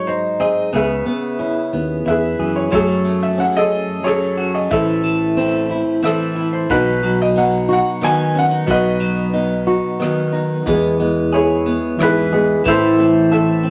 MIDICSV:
0, 0, Header, 1, 6, 480
1, 0, Start_track
1, 0, Key_signature, 4, "major"
1, 0, Tempo, 662252
1, 529, Time_signature, 3, 2, 24, 8
1, 9930, End_track
2, 0, Start_track
2, 0, Title_t, "Felt piano"
2, 0, Program_c, 0, 0
2, 51, Note_on_c, 0, 72, 71
2, 293, Note_on_c, 0, 75, 78
2, 297, Note_off_c, 0, 72, 0
2, 538, Note_off_c, 0, 75, 0
2, 547, Note_on_c, 0, 76, 73
2, 551, Note_on_c, 0, 68, 53
2, 554, Note_on_c, 0, 71, 55
2, 1495, Note_off_c, 0, 76, 0
2, 1506, Note_on_c, 0, 76, 77
2, 1509, Note_off_c, 0, 71, 0
2, 1513, Note_off_c, 0, 68, 0
2, 1520, Note_on_c, 0, 71, 53
2, 1524, Note_on_c, 0, 68, 51
2, 1854, Note_on_c, 0, 73, 60
2, 1872, Note_off_c, 0, 76, 0
2, 1960, Note_off_c, 0, 71, 0
2, 1960, Note_off_c, 0, 73, 0
2, 1962, Note_off_c, 0, 68, 0
2, 1971, Note_on_c, 0, 73, 75
2, 1987, Note_on_c, 0, 69, 54
2, 1993, Note_on_c, 0, 68, 55
2, 2309, Note_off_c, 0, 73, 0
2, 2339, Note_on_c, 0, 76, 74
2, 2462, Note_off_c, 0, 76, 0
2, 2462, Note_on_c, 0, 78, 75
2, 2581, Note_off_c, 0, 68, 0
2, 2583, Note_off_c, 0, 78, 0
2, 2584, Note_off_c, 0, 69, 0
2, 2584, Note_on_c, 0, 75, 97
2, 2592, Note_on_c, 0, 68, 59
2, 2595, Note_on_c, 0, 69, 59
2, 2930, Note_on_c, 0, 73, 73
2, 2933, Note_off_c, 0, 69, 0
2, 2937, Note_off_c, 0, 68, 0
2, 2944, Note_on_c, 0, 69, 53
2, 2948, Note_on_c, 0, 68, 55
2, 2952, Note_off_c, 0, 75, 0
2, 3295, Note_on_c, 0, 75, 64
2, 3305, Note_off_c, 0, 73, 0
2, 3392, Note_off_c, 0, 69, 0
2, 3394, Note_off_c, 0, 68, 0
2, 3414, Note_on_c, 0, 76, 77
2, 3420, Note_off_c, 0, 75, 0
2, 3420, Note_on_c, 0, 72, 53
2, 3422, Note_on_c, 0, 69, 59
2, 4105, Note_off_c, 0, 76, 0
2, 4109, Note_off_c, 0, 69, 0
2, 4109, Note_off_c, 0, 72, 0
2, 4377, Note_on_c, 0, 76, 76
2, 4386, Note_on_c, 0, 69, 51
2, 4390, Note_on_c, 0, 72, 52
2, 4719, Note_off_c, 0, 72, 0
2, 4730, Note_on_c, 0, 72, 64
2, 4746, Note_off_c, 0, 76, 0
2, 4831, Note_off_c, 0, 69, 0
2, 4856, Note_off_c, 0, 72, 0
2, 4860, Note_on_c, 0, 71, 80
2, 4861, Note_on_c, 0, 66, 58
2, 4863, Note_on_c, 0, 63, 59
2, 5192, Note_off_c, 0, 71, 0
2, 5230, Note_on_c, 0, 75, 80
2, 5345, Note_off_c, 0, 75, 0
2, 5347, Note_on_c, 0, 78, 83
2, 5546, Note_off_c, 0, 66, 0
2, 5547, Note_off_c, 0, 63, 0
2, 5586, Note_off_c, 0, 78, 0
2, 5601, Note_on_c, 0, 78, 90
2, 5830, Note_on_c, 0, 80, 90
2, 5832, Note_off_c, 0, 78, 0
2, 6043, Note_off_c, 0, 80, 0
2, 6077, Note_on_c, 0, 78, 88
2, 6308, Note_on_c, 0, 75, 80
2, 6309, Note_off_c, 0, 78, 0
2, 6309, Note_on_c, 0, 66, 59
2, 6310, Note_on_c, 0, 71, 59
2, 7230, Note_off_c, 0, 75, 0
2, 7231, Note_off_c, 0, 66, 0
2, 7231, Note_off_c, 0, 71, 0
2, 8219, Note_on_c, 0, 73, 69
2, 8227, Note_on_c, 0, 64, 52
2, 8230, Note_on_c, 0, 68, 49
2, 8707, Note_off_c, 0, 64, 0
2, 8709, Note_off_c, 0, 73, 0
2, 8712, Note_off_c, 0, 68, 0
2, 8717, Note_on_c, 0, 71, 82
2, 8718, Note_on_c, 0, 64, 54
2, 8722, Note_on_c, 0, 68, 54
2, 9155, Note_off_c, 0, 64, 0
2, 9158, Note_off_c, 0, 68, 0
2, 9188, Note_on_c, 0, 72, 96
2, 9189, Note_on_c, 0, 69, 64
2, 9190, Note_on_c, 0, 64, 63
2, 9198, Note_off_c, 0, 71, 0
2, 9631, Note_off_c, 0, 72, 0
2, 9649, Note_off_c, 0, 69, 0
2, 9658, Note_on_c, 0, 76, 80
2, 9660, Note_on_c, 0, 69, 57
2, 9665, Note_on_c, 0, 72, 54
2, 9872, Note_off_c, 0, 64, 0
2, 9930, Note_off_c, 0, 69, 0
2, 9930, Note_off_c, 0, 72, 0
2, 9930, Note_off_c, 0, 76, 0
2, 9930, End_track
3, 0, Start_track
3, 0, Title_t, "Clean electric guitar"
3, 0, Program_c, 1, 27
3, 0, Note_on_c, 1, 54, 72
3, 0, Note_on_c, 1, 68, 59
3, 53, Note_on_c, 1, 63, 54
3, 287, Note_off_c, 1, 68, 0
3, 290, Note_on_c, 1, 68, 54
3, 527, Note_on_c, 1, 59, 66
3, 530, Note_off_c, 1, 54, 0
3, 530, Note_off_c, 1, 68, 0
3, 533, Note_on_c, 1, 68, 57
3, 579, Note_off_c, 1, 63, 0
3, 762, Note_off_c, 1, 59, 0
3, 770, Note_on_c, 1, 59, 48
3, 1009, Note_on_c, 1, 64, 51
3, 1246, Note_off_c, 1, 59, 0
3, 1254, Note_on_c, 1, 59, 49
3, 1484, Note_off_c, 1, 64, 0
3, 1492, Note_on_c, 1, 64, 48
3, 1727, Note_off_c, 1, 68, 0
3, 1735, Note_on_c, 1, 68, 47
3, 1972, Note_on_c, 1, 54, 62
3, 2023, Note_off_c, 1, 64, 0
3, 2024, Note_off_c, 1, 68, 0
3, 2025, Note_off_c, 1, 59, 0
3, 2209, Note_on_c, 1, 57, 49
3, 2450, Note_on_c, 1, 61, 53
3, 2921, Note_off_c, 1, 61, 0
3, 2929, Note_on_c, 1, 61, 55
3, 3171, Note_on_c, 1, 66, 57
3, 3292, Note_off_c, 1, 66, 0
3, 3292, Note_on_c, 1, 68, 44
3, 3409, Note_off_c, 1, 54, 0
3, 3412, Note_on_c, 1, 52, 62
3, 3462, Note_off_c, 1, 57, 0
3, 3462, Note_off_c, 1, 61, 0
3, 3463, Note_off_c, 1, 68, 0
3, 3642, Note_off_c, 1, 52, 0
3, 3650, Note_on_c, 1, 52, 48
3, 3893, Note_on_c, 1, 60, 49
3, 4129, Note_on_c, 1, 64, 59
3, 4359, Note_off_c, 1, 60, 0
3, 4368, Note_on_c, 1, 60, 54
3, 4601, Note_off_c, 1, 64, 0
3, 4610, Note_on_c, 1, 64, 54
3, 4851, Note_off_c, 1, 52, 0
3, 4855, Note_on_c, 1, 54, 71
3, 4899, Note_off_c, 1, 60, 0
3, 4900, Note_off_c, 1, 64, 0
3, 5088, Note_off_c, 1, 54, 0
3, 5097, Note_on_c, 1, 54, 56
3, 5334, Note_on_c, 1, 59, 51
3, 5571, Note_on_c, 1, 63, 62
3, 5805, Note_off_c, 1, 59, 0
3, 5808, Note_on_c, 1, 59, 59
3, 6049, Note_off_c, 1, 63, 0
3, 6054, Note_on_c, 1, 61, 57
3, 6169, Note_off_c, 1, 61, 0
3, 6169, Note_on_c, 1, 63, 51
3, 6280, Note_off_c, 1, 54, 0
3, 6288, Note_on_c, 1, 54, 71
3, 6517, Note_off_c, 1, 54, 0
3, 6525, Note_on_c, 1, 54, 57
3, 6758, Note_off_c, 1, 59, 0
3, 6767, Note_on_c, 1, 59, 55
3, 6999, Note_off_c, 1, 63, 0
3, 7008, Note_on_c, 1, 63, 59
3, 7238, Note_off_c, 1, 59, 0
3, 7247, Note_on_c, 1, 59, 62
3, 7476, Note_off_c, 1, 63, 0
3, 7485, Note_on_c, 1, 63, 62
3, 7722, Note_off_c, 1, 59, 0
3, 7731, Note_on_c, 1, 59, 70
3, 7777, Note_off_c, 1, 63, 0
3, 7778, Note_off_c, 1, 54, 0
3, 7962, Note_off_c, 1, 59, 0
3, 7971, Note_on_c, 1, 59, 53
3, 8209, Note_on_c, 1, 68, 65
3, 8443, Note_off_c, 1, 59, 0
3, 8452, Note_on_c, 1, 59, 59
3, 8694, Note_on_c, 1, 64, 57
3, 8924, Note_off_c, 1, 68, 0
3, 8932, Note_on_c, 1, 68, 61
3, 9172, Note_on_c, 1, 52, 74
3, 9219, Note_off_c, 1, 59, 0
3, 9220, Note_off_c, 1, 68, 0
3, 9411, Note_on_c, 1, 60, 52
3, 9651, Note_on_c, 1, 69, 66
3, 9873, Note_off_c, 1, 60, 0
3, 9882, Note_on_c, 1, 60, 59
3, 9930, Note_off_c, 1, 52, 0
3, 9930, Note_off_c, 1, 60, 0
3, 9930, Note_off_c, 1, 64, 0
3, 9930, Note_off_c, 1, 69, 0
3, 9930, End_track
4, 0, Start_track
4, 0, Title_t, "Nylon-string guitar"
4, 0, Program_c, 2, 24
4, 0, Note_on_c, 2, 44, 64
4, 0, Note_on_c, 2, 66, 54
4, 64, Note_on_c, 2, 63, 54
4, 289, Note_on_c, 2, 60, 56
4, 500, Note_off_c, 2, 60, 0
4, 504, Note_off_c, 2, 44, 0
4, 505, Note_off_c, 2, 66, 0
4, 508, Note_off_c, 2, 63, 0
4, 530, Note_on_c, 2, 49, 65
4, 772, Note_on_c, 2, 59, 50
4, 1013, Note_on_c, 2, 61, 51
4, 1252, Note_off_c, 2, 49, 0
4, 1487, Note_off_c, 2, 59, 0
4, 1496, Note_on_c, 2, 59, 46
4, 1735, Note_on_c, 2, 52, 51
4, 1947, Note_off_c, 2, 52, 0
4, 1948, Note_off_c, 2, 59, 0
4, 1948, Note_off_c, 2, 61, 0
4, 1966, Note_on_c, 2, 42, 63
4, 1973, Note_on_c, 2, 54, 53
4, 1979, Note_on_c, 2, 57, 58
4, 1985, Note_on_c, 2, 61, 54
4, 2443, Note_off_c, 2, 61, 0
4, 2452, Note_on_c, 2, 61, 49
4, 2913, Note_off_c, 2, 54, 0
4, 2922, Note_on_c, 2, 54, 52
4, 3381, Note_off_c, 2, 54, 0
4, 3384, Note_off_c, 2, 42, 0
4, 3387, Note_off_c, 2, 61, 0
4, 3391, Note_off_c, 2, 57, 0
4, 3411, Note_on_c, 2, 45, 71
4, 3892, Note_on_c, 2, 60, 48
4, 4136, Note_on_c, 2, 64, 58
4, 4370, Note_on_c, 2, 52, 54
4, 4823, Note_off_c, 2, 52, 0
4, 4823, Note_off_c, 2, 60, 0
4, 4851, Note_off_c, 2, 45, 0
4, 4854, Note_off_c, 2, 64, 0
4, 4858, Note_on_c, 2, 47, 76
4, 5344, Note_on_c, 2, 63, 57
4, 5571, Note_on_c, 2, 66, 62
4, 5813, Note_off_c, 2, 47, 0
4, 5813, Note_on_c, 2, 51, 55
4, 6260, Note_off_c, 2, 66, 0
4, 6261, Note_off_c, 2, 51, 0
4, 6265, Note_off_c, 2, 63, 0
4, 6280, Note_on_c, 2, 47, 77
4, 6767, Note_on_c, 2, 63, 59
4, 7008, Note_on_c, 2, 66, 65
4, 7245, Note_off_c, 2, 47, 0
4, 7247, Note_on_c, 2, 51, 56
4, 7701, Note_off_c, 2, 51, 0
4, 7702, Note_off_c, 2, 63, 0
4, 7703, Note_off_c, 2, 66, 0
4, 7726, Note_on_c, 2, 40, 65
4, 7728, Note_on_c, 2, 52, 59
4, 7736, Note_on_c, 2, 56, 61
4, 7742, Note_on_c, 2, 59, 63
4, 7746, Note_on_c, 2, 68, 62
4, 7965, Note_off_c, 2, 56, 0
4, 7974, Note_on_c, 2, 56, 56
4, 8686, Note_off_c, 2, 52, 0
4, 8689, Note_on_c, 2, 52, 59
4, 8926, Note_off_c, 2, 56, 0
4, 8928, Note_off_c, 2, 59, 0
4, 8934, Note_on_c, 2, 56, 56
4, 8938, Note_off_c, 2, 68, 0
4, 8938, Note_on_c, 2, 59, 57
4, 8946, Note_on_c, 2, 68, 65
4, 9144, Note_off_c, 2, 56, 0
4, 9150, Note_off_c, 2, 68, 0
4, 9169, Note_off_c, 2, 40, 0
4, 9169, Note_on_c, 2, 45, 70
4, 9170, Note_off_c, 2, 52, 0
4, 9173, Note_on_c, 2, 52, 61
4, 9174, Note_off_c, 2, 59, 0
4, 9178, Note_on_c, 2, 57, 64
4, 9182, Note_on_c, 2, 60, 61
4, 9187, Note_on_c, 2, 64, 65
4, 9404, Note_off_c, 2, 57, 0
4, 9413, Note_on_c, 2, 57, 51
4, 9930, Note_off_c, 2, 45, 0
4, 9930, Note_off_c, 2, 52, 0
4, 9930, Note_off_c, 2, 57, 0
4, 9930, Note_off_c, 2, 60, 0
4, 9930, Note_off_c, 2, 64, 0
4, 9930, End_track
5, 0, Start_track
5, 0, Title_t, "Fretless electric bass"
5, 0, Program_c, 3, 35
5, 539, Note_on_c, 3, 37, 88
5, 736, Note_off_c, 3, 37, 0
5, 1258, Note_on_c, 3, 39, 67
5, 1472, Note_off_c, 3, 39, 0
5, 1496, Note_on_c, 3, 40, 59
5, 1712, Note_off_c, 3, 40, 0
5, 1735, Note_on_c, 3, 42, 65
5, 1951, Note_off_c, 3, 42, 0
5, 1979, Note_on_c, 3, 42, 84
5, 2781, Note_off_c, 3, 42, 0
5, 3419, Note_on_c, 3, 33, 89
5, 4218, Note_off_c, 3, 33, 0
5, 4856, Note_on_c, 3, 35, 96
5, 5654, Note_off_c, 3, 35, 0
5, 6292, Note_on_c, 3, 35, 95
5, 7093, Note_off_c, 3, 35, 0
5, 7738, Note_on_c, 3, 40, 85
5, 8537, Note_off_c, 3, 40, 0
5, 8691, Note_on_c, 3, 44, 89
5, 9092, Note_off_c, 3, 44, 0
5, 9176, Note_on_c, 3, 33, 85
5, 9930, Note_off_c, 3, 33, 0
5, 9930, End_track
6, 0, Start_track
6, 0, Title_t, "Drums"
6, 1978, Note_on_c, 9, 36, 82
6, 1978, Note_on_c, 9, 51, 47
6, 2050, Note_off_c, 9, 51, 0
6, 2051, Note_off_c, 9, 36, 0
6, 2458, Note_on_c, 9, 51, 42
6, 2531, Note_off_c, 9, 51, 0
6, 2937, Note_on_c, 9, 51, 43
6, 2948, Note_on_c, 9, 37, 58
6, 3010, Note_off_c, 9, 51, 0
6, 3021, Note_off_c, 9, 37, 0
6, 3415, Note_on_c, 9, 51, 40
6, 3417, Note_on_c, 9, 36, 84
6, 3488, Note_off_c, 9, 51, 0
6, 3489, Note_off_c, 9, 36, 0
6, 3900, Note_on_c, 9, 51, 44
6, 3972, Note_off_c, 9, 51, 0
6, 4379, Note_on_c, 9, 51, 43
6, 4389, Note_on_c, 9, 37, 63
6, 4451, Note_off_c, 9, 51, 0
6, 4462, Note_off_c, 9, 37, 0
6, 4854, Note_on_c, 9, 51, 46
6, 4855, Note_on_c, 9, 36, 76
6, 4927, Note_off_c, 9, 51, 0
6, 4928, Note_off_c, 9, 36, 0
6, 5338, Note_on_c, 9, 51, 48
6, 5411, Note_off_c, 9, 51, 0
6, 5811, Note_on_c, 9, 51, 46
6, 5822, Note_on_c, 9, 37, 69
6, 5884, Note_off_c, 9, 51, 0
6, 5895, Note_off_c, 9, 37, 0
6, 6287, Note_on_c, 9, 51, 45
6, 6291, Note_on_c, 9, 36, 81
6, 6360, Note_off_c, 9, 51, 0
6, 6363, Note_off_c, 9, 36, 0
6, 6772, Note_on_c, 9, 51, 49
6, 6845, Note_off_c, 9, 51, 0
6, 7252, Note_on_c, 9, 51, 43
6, 7263, Note_on_c, 9, 37, 64
6, 7325, Note_off_c, 9, 51, 0
6, 7336, Note_off_c, 9, 37, 0
6, 7735, Note_on_c, 9, 36, 88
6, 7735, Note_on_c, 9, 42, 48
6, 7807, Note_off_c, 9, 36, 0
6, 7807, Note_off_c, 9, 42, 0
6, 8217, Note_on_c, 9, 42, 45
6, 8289, Note_off_c, 9, 42, 0
6, 8690, Note_on_c, 9, 42, 47
6, 8701, Note_on_c, 9, 37, 66
6, 8763, Note_off_c, 9, 42, 0
6, 8774, Note_off_c, 9, 37, 0
6, 9172, Note_on_c, 9, 36, 92
6, 9172, Note_on_c, 9, 42, 48
6, 9244, Note_off_c, 9, 42, 0
6, 9245, Note_off_c, 9, 36, 0
6, 9650, Note_on_c, 9, 42, 54
6, 9723, Note_off_c, 9, 42, 0
6, 9930, End_track
0, 0, End_of_file